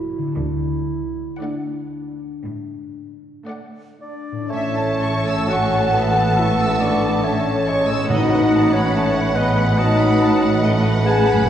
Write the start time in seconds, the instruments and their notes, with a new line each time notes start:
Already playing: double bass section A1, cello section A2, harp A2 C#4 E4 A4, viola section A3, clarinet E4, violin section C#5 E5
0.18 harp D3
0.23 harp D4
0.27 harp F#4
0.32 clarinet E4, harp A4
0.36 double bass section D2, cello section D3
1.41 viola section A3, clarinet D4, violin section D5 F#5
2.45 cello section A2
3.47 viola section A3, violin section D5 F#5
4.01 french horn section D4, flute section D5, oboe D5
4.32 harp A2
4.37 harp C#4
4.41 harp E4
4.45 harp A4
4.49 double bass section A1, cello section A2, bassoon A3, french horn section C#4, viola section A4, oboe C#5, flute section C#5, violin section E5 A5
4.77 violin section A5
5.02 violin section C#6
5.28 violin section E6
5.48 bassoon C#4, french horn section F#4, oboe F#5, flute section F#5, violin section C#6
5.76 violin section A5
5.94 bassoon B3, violin section E5
6.17 violin section A5
6.37 french horn section E4, oboe E5, flute section E5, violin section C#6
6.61 violin section E6
6.80 french horn section D4, flute section D5, oboe D5, violin section C#6
7.03 violin section A5
7.23 bassoon A3, french horn section C#4, flute section C#5, oboe C#5, violin section E5
7.45 violin section A5
7.66 bassoon G#3, violin section C#6
7.87 harp A2, violin section E6
7.95 harp B3
7.99 harp F#4
8.04 harp B4
8.09 double bass section A1, cello section A2, timpani A2, bassoon F#3, french horn section D#4, viola section B4, flute section D#5, violin section D#5 F#5, oboe D#5
8.32 violin section F#5
8.54 violin section A5
8.72 french horn section C#4, flute section C#5, oboe C#5, violin section B5
8.94 bassoon A3, violin section A5
9.16 violin section F#5
9.35 bassoon G#3, french horn section B3, flute section B4, oboe B4, violin section D#5
9.58 violin section F#5
9.77 bassoon F#3, french horn section D#4, flute section D#5, oboe D#5, violin section A5
10.00 violin section B5
10.21 violin section A5
10.43 violin section F#5
10.63 bassoon A3, violin section D#5
10.86 violin section F#5
11.05 bassoon B3, french horn section G#4, oboe G#5, flute section G#5, violin section A5
11.28 harp F#2, violin section B5
11.35 harp A3
11.40 harp F#4
11.44 harp D5